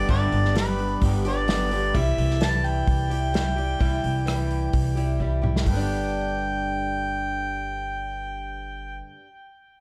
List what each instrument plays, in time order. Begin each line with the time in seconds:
0.08 upright bass G1, steel-string acoustic guitar G2 D3 G3 B3 D4 G4, harmonica D5, kick, open hi-hat
0.32 upright bass G1, open hi-hat
0.45 snare
0.55 steel-string acoustic guitar G3 B3 D4 G4, harmonica B4, snare, open hi-hat
0.79 open hi-hat
1.01 upright bass G1, clean electric guitar G3 B3 D4 G4, kick, open hi-hat
1.25 steel-string acoustic guitar G3 B3 D4 G4, harmonica D5, open hi-hat
1.48 clean electric guitar G2 D3, steel-string acoustic guitar G3 B3 D4 G4, snare, open hi-hat
1.71 steel-string acoustic guitar G3 B3 D4 G4, open hi-hat
1.94 upright bass C2, steel-string acoustic guitar C3 E3 G3 E4 G4, harmonica E5, kick, open hi-hat
2.18 upright bass C2, open hi-hat
2.30 snare
2.40 steel-string acoustic guitar E3 G3 E4 G4, harmonica A5, snare, open hi-hat
2.64 harmonica G5, open hi-hat
2.87 upright bass C2, kick, open hi-hat
3.10 steel-string acoustic guitar G3 E4 G4, open hi-hat
3.33 steel-string acoustic guitar E3 G3 E4 G4, snare, open hi-hat
3.56 steel-string acoustic guitar G3 E4 G4, open hi-hat
3.79 upright bass C2, steel-string acoustic guitar C3 E3 G3 E4 G4, kick, open hi-hat
4.04 upright bass C2, open hi-hat
4.26 steel-string acoustic guitar E3 G3 E4 G4, cross-stick, open hi-hat
4.51 open hi-hat
4.73 upright bass C2, kick, open hi-hat
4.95 steel-string acoustic guitar G3 E4 G4, open hi-hat
5.19 steel-string acoustic guitar E3 G3 E4 G4, kick
5.42 steel-string acoustic guitar G3 E4 G4, mid tom
5.56 snare
5.61 steel-string acoustic guitar G2
5.66 upright bass G1, steel-string acoustic guitar D3 G3, harmonica G5, kick, open hi-hat
5.73 steel-string acoustic guitar B3 D4
5.79 steel-string acoustic guitar G4